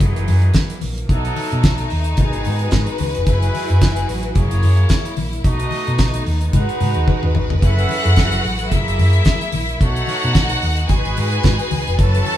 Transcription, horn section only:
0.00 0.80 E3 medium
0.00 0.80 D#4 medium
0.00 0.80 G#4 medium
1.09 1.89 F#3 medium
1.09 1.89 D#4 medium
1.09 1.89 A4 loud
2.18 2.98 D#3 medium
2.18 2.98 B3 medium
2.18 2.98 G#4 medium
3.27 4.07 G#3 medium
3.27 4.07 E4 medium
3.27 4.07 B4 medium
4.36 5.16 A#3 medium
4.36 5.16 G#4 medium
4.36 5.16 C#5 medium
5.45 6.25 A3 medium
5.45 6.25 F#4 medium
5.45 6.25 D#5 loud
6.53 7.34 D#4 medium
6.53 7.34 B4 medium
6.53 7.34 F#5 medium
7.62 8.43 C#4 medium
7.62 8.43 B4 medium
7.62 8.43 E5 loud
8.72 9.52 A#3 medium
8.72 9.52 G#4 medium
8.72 9.52 E5 medium
9.81 10.61 A3 medium
9.81 10.61 F#4 medium
9.81 10.61 C#5 medium
10.90 11.70 G#3 medium
10.90 11.70 F#4 medium
10.90 11.70 B4 medium
11.99 12.37 E3 medium
11.99 12.37 C#4 medium
11.99 12.37 A4 loud

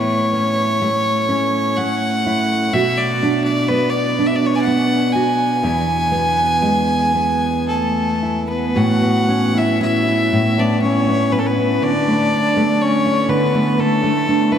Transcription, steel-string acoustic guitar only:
0.00 2.73 A2 medium
0.00 0.81 A3 soft
0.00 2.25 E4 medium
0.33 1.28 C#4 soft
0.82 1.77 A3 medium
1.29 2.84 C#4 medium
1.78 2.84 A3 medium
2.26 2.74 E4 medium
2.73 5.61 B2 medium
2.73 5.13 F#4 medium
3.23 4.17 D4 medium
3.70 4.67 B3 medium
4.19 5.73 D4 medium
4.67 6.12 B3 medium
5.15 5.63 F#4 medium
5.63 8.76 E2 medium
5.63 8.22 E4 medium
6.12 7.15 B3 medium
6.62 7.68 G#3 soft
7.15 9.02 B3 soft
8.23 10.08 E4 soft
8.76 10.31 A2 medium
9.02 9.54 B3 soft
9.29 9.80 C#4 soft
9.55 10.57 B3 soft
9.81 10.81 C#4 soft
10.08 11.57 E4 soft
10.33 11.82 A2 medium
10.58 11.07 B3 soft
10.83 11.32 C#4 soft
11.08 11.93 B3 soft
11.33 11.93 C#4 soft
11.57 12.37 E4 soft
11.82 13.28 D3 medium
12.08 12.56 A3 soft
12.34 13.09 D4 medium
12.57 13.53 A3 soft
13.06 14.51 E4 medium
13.29 14.58 D3 medium
13.54 14.02 A3 soft
13.78 14.28 D4 soft
14.03 14.58 A3 soft
14.29 14.58 D4 medium
14.52 14.58 E4 medium

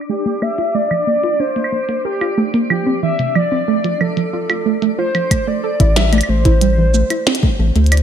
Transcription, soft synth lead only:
0.09 0.44 G4 loud
0.42 0.76 E5 loud
0.75 1.41 D5 loud
1.40 2.05 C5 loud
2.05 2.51 G4 medium
2.70 3.01 G4 medium
3.03 3.37 E5 loud
3.36 4.02 D5 loud
4.01 4.98 A4 medium
4.99 5.49 C5 loud
5.48 5.96 D5 loud
5.96 6.14 E5 loud
6.13 6.31 D5 loud
6.29 7.59 C5 loud

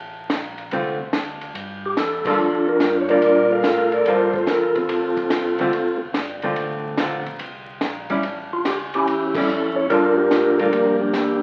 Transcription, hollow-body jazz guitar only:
0.73 0.98 D3 soft
0.73 0.98 A3 medium
0.73 0.98 C4 medium
0.73 0.98 F4 medium
2.26 2.38 G3 medium
2.26 2.39 A#3 medium
2.26 2.39 F4 medium
2.26 2.39 A4 medium
3.11 3.62 G3 medium
3.11 3.62 A#3 medium
3.11 3.63 F4 medium
4.08 4.32 G3 medium
4.08 4.32 A#3 medium
4.08 4.32 F4 medium
4.08 4.32 A4 medium
5.59 5.72 D3 medium
5.59 5.72 A3 medium
5.59 5.72 C4 medium
5.59 5.73 F4 medium
6.43 6.96 D3 medium
6.43 6.96 A3 medium
6.43 6.96 C4 medium
6.43 6.96 F4 medium
6.98 7.23 D3 medium
6.98 7.24 A3 medium
6.98 7.24 C4 medium
6.98 7.24 F4 medium
8.10 8.22 G3 medium
8.10 8.22 C#4 medium
8.10 8.23 E4 medium
9.37 9.48 G3 medium
9.37 9.48 C#4 medium
9.37 9.49 E4 medium
9.90 10.15 G3 medium
9.90 10.16 A#3 medium
9.90 10.16 F4 medium
9.90 10.16 A4 medium
10.60 11.12 G3 medium
10.60 11.12 A#3 medium
10.60 11.12 F4 medium

